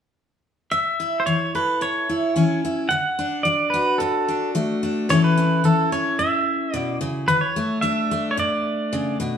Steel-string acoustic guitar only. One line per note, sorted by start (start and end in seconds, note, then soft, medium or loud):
0.71 1.21 A2 medium
1.00 2.08 E4 medium
1.27 1.76 E3 medium
1.55 3.73 A4 medium
1.81 2.31 A2 medium
2.09 2.63 E4 soft
2.36 2.85 E3 medium
2.36 2.88 C#4 medium
2.65 2.88 E4 medium
2.90 3.40 D3 medium
3.19 4.27 D4 medium
3.45 3.95 F#3 medium
3.74 5.10 F#4 medium
4.00 4.50 A2 medium
4.28 4.82 D4 medium
4.55 5.04 F#3 medium
4.55 5.10 A3 medium
4.83 5.07 D4 medium
5.09 5.59 A2 medium
5.09 5.63 E3 medium
5.09 5.36 C#4 medium
5.09 5.63 E4 medium
5.09 8.62 A4 medium
5.37 5.91 C#4 medium
5.64 6.14 E3 medium
5.64 7.26 E4 medium
5.92 7.26 C#4 medium
6.19 6.69 A2 medium
6.74 7.00 B2 medium
7.01 7.28 C#3 medium
7.28 7.78 D3 medium
7.56 8.11 A3 medium
7.82 8.32 F#3 medium
7.82 9.38 D4 medium
8.11 9.38 A3 medium
8.37 8.87 A2 medium
8.93 9.19 C#3 medium
9.20 9.38 B2 medium